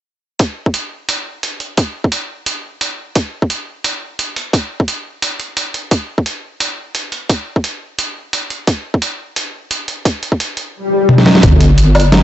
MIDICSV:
0, 0, Header, 1, 5, 480
1, 0, Start_track
1, 0, Tempo, 344828
1, 555, Time_signature, 4, 2, 24, 8
1, 17026, End_track
2, 0, Start_track
2, 0, Title_t, "Wobble bass"
2, 0, Program_c, 0, 39
2, 15916, Note_on_c, 0, 31, 103
2, 17026, Note_off_c, 0, 31, 0
2, 17026, End_track
3, 0, Start_track
3, 0, Title_t, "Sub drop"
3, 0, Program_c, 1, 103
3, 15914, Note_on_c, 1, 60, 78
3, 17026, Note_off_c, 1, 60, 0
3, 17026, End_track
4, 0, Start_track
4, 0, Title_t, "Swell"
4, 0, Program_c, 2, 103
4, 14953, Note_on_c, 2, 60, 72
4, 15914, Note_off_c, 2, 60, 0
4, 17026, End_track
5, 0, Start_track
5, 0, Title_t, "Drums"
5, 548, Note_on_c, 9, 42, 72
5, 553, Note_on_c, 9, 36, 109
5, 687, Note_off_c, 9, 42, 0
5, 692, Note_off_c, 9, 36, 0
5, 922, Note_on_c, 9, 36, 55
5, 1028, Note_on_c, 9, 42, 62
5, 1061, Note_off_c, 9, 36, 0
5, 1168, Note_off_c, 9, 42, 0
5, 1512, Note_on_c, 9, 42, 74
5, 1651, Note_off_c, 9, 42, 0
5, 1993, Note_on_c, 9, 42, 61
5, 2132, Note_off_c, 9, 42, 0
5, 2229, Note_on_c, 9, 42, 35
5, 2368, Note_off_c, 9, 42, 0
5, 2469, Note_on_c, 9, 42, 73
5, 2474, Note_on_c, 9, 36, 108
5, 2609, Note_off_c, 9, 42, 0
5, 2613, Note_off_c, 9, 36, 0
5, 2844, Note_on_c, 9, 36, 59
5, 2949, Note_on_c, 9, 42, 62
5, 2983, Note_off_c, 9, 36, 0
5, 3088, Note_off_c, 9, 42, 0
5, 3429, Note_on_c, 9, 42, 75
5, 3568, Note_off_c, 9, 42, 0
5, 3912, Note_on_c, 9, 42, 61
5, 4051, Note_off_c, 9, 42, 0
5, 4391, Note_on_c, 9, 42, 73
5, 4395, Note_on_c, 9, 36, 111
5, 4531, Note_off_c, 9, 42, 0
5, 4534, Note_off_c, 9, 36, 0
5, 4764, Note_on_c, 9, 36, 59
5, 4872, Note_on_c, 9, 42, 61
5, 4903, Note_off_c, 9, 36, 0
5, 5011, Note_off_c, 9, 42, 0
5, 5351, Note_on_c, 9, 42, 74
5, 5490, Note_off_c, 9, 42, 0
5, 5833, Note_on_c, 9, 42, 59
5, 5972, Note_off_c, 9, 42, 0
5, 6075, Note_on_c, 9, 42, 35
5, 6214, Note_off_c, 9, 42, 0
5, 6311, Note_on_c, 9, 36, 112
5, 6316, Note_on_c, 9, 42, 69
5, 6450, Note_off_c, 9, 36, 0
5, 6455, Note_off_c, 9, 42, 0
5, 6681, Note_on_c, 9, 36, 60
5, 6792, Note_on_c, 9, 42, 59
5, 6820, Note_off_c, 9, 36, 0
5, 6931, Note_off_c, 9, 42, 0
5, 7272, Note_on_c, 9, 42, 70
5, 7411, Note_off_c, 9, 42, 0
5, 7511, Note_on_c, 9, 42, 33
5, 7650, Note_off_c, 9, 42, 0
5, 7750, Note_on_c, 9, 42, 59
5, 7889, Note_off_c, 9, 42, 0
5, 7993, Note_on_c, 9, 42, 34
5, 8133, Note_off_c, 9, 42, 0
5, 8230, Note_on_c, 9, 42, 69
5, 8232, Note_on_c, 9, 36, 111
5, 8370, Note_off_c, 9, 42, 0
5, 8371, Note_off_c, 9, 36, 0
5, 8602, Note_on_c, 9, 36, 57
5, 8713, Note_on_c, 9, 42, 58
5, 8741, Note_off_c, 9, 36, 0
5, 8853, Note_off_c, 9, 42, 0
5, 9192, Note_on_c, 9, 42, 70
5, 9332, Note_off_c, 9, 42, 0
5, 9670, Note_on_c, 9, 42, 59
5, 9809, Note_off_c, 9, 42, 0
5, 9912, Note_on_c, 9, 42, 33
5, 10051, Note_off_c, 9, 42, 0
5, 10155, Note_on_c, 9, 36, 102
5, 10155, Note_on_c, 9, 42, 69
5, 10294, Note_off_c, 9, 36, 0
5, 10294, Note_off_c, 9, 42, 0
5, 10525, Note_on_c, 9, 36, 55
5, 10635, Note_on_c, 9, 42, 57
5, 10664, Note_off_c, 9, 36, 0
5, 10774, Note_off_c, 9, 42, 0
5, 11116, Note_on_c, 9, 42, 72
5, 11255, Note_off_c, 9, 42, 0
5, 11597, Note_on_c, 9, 42, 60
5, 11736, Note_off_c, 9, 42, 0
5, 11838, Note_on_c, 9, 42, 33
5, 11977, Note_off_c, 9, 42, 0
5, 12075, Note_on_c, 9, 36, 105
5, 12075, Note_on_c, 9, 42, 72
5, 12214, Note_off_c, 9, 36, 0
5, 12214, Note_off_c, 9, 42, 0
5, 12445, Note_on_c, 9, 36, 57
5, 12555, Note_on_c, 9, 42, 60
5, 12584, Note_off_c, 9, 36, 0
5, 12694, Note_off_c, 9, 42, 0
5, 13034, Note_on_c, 9, 42, 72
5, 13173, Note_off_c, 9, 42, 0
5, 13514, Note_on_c, 9, 42, 61
5, 13653, Note_off_c, 9, 42, 0
5, 13754, Note_on_c, 9, 42, 34
5, 13893, Note_off_c, 9, 42, 0
5, 13995, Note_on_c, 9, 36, 108
5, 13996, Note_on_c, 9, 42, 73
5, 14134, Note_off_c, 9, 36, 0
5, 14135, Note_off_c, 9, 42, 0
5, 14236, Note_on_c, 9, 42, 35
5, 14364, Note_on_c, 9, 36, 56
5, 14375, Note_off_c, 9, 42, 0
5, 14478, Note_on_c, 9, 42, 63
5, 14503, Note_off_c, 9, 36, 0
5, 14618, Note_off_c, 9, 42, 0
5, 14714, Note_on_c, 9, 42, 36
5, 14853, Note_off_c, 9, 42, 0
5, 15436, Note_on_c, 9, 48, 58
5, 15566, Note_on_c, 9, 38, 59
5, 15576, Note_off_c, 9, 48, 0
5, 15673, Note_off_c, 9, 38, 0
5, 15673, Note_on_c, 9, 38, 84
5, 15801, Note_off_c, 9, 38, 0
5, 15801, Note_on_c, 9, 38, 77
5, 15911, Note_on_c, 9, 42, 83
5, 15915, Note_on_c, 9, 36, 121
5, 15940, Note_off_c, 9, 38, 0
5, 16051, Note_off_c, 9, 42, 0
5, 16055, Note_off_c, 9, 36, 0
5, 16155, Note_on_c, 9, 42, 71
5, 16294, Note_off_c, 9, 42, 0
5, 16395, Note_on_c, 9, 42, 83
5, 16534, Note_off_c, 9, 42, 0
5, 16634, Note_on_c, 9, 42, 52
5, 16634, Note_on_c, 9, 77, 83
5, 16699, Note_off_c, 9, 42, 0
5, 16699, Note_on_c, 9, 42, 68
5, 16773, Note_off_c, 9, 77, 0
5, 16838, Note_off_c, 9, 42, 0
5, 16874, Note_on_c, 9, 38, 121
5, 16874, Note_on_c, 9, 42, 85
5, 17014, Note_off_c, 9, 38, 0
5, 17014, Note_off_c, 9, 42, 0
5, 17026, End_track
0, 0, End_of_file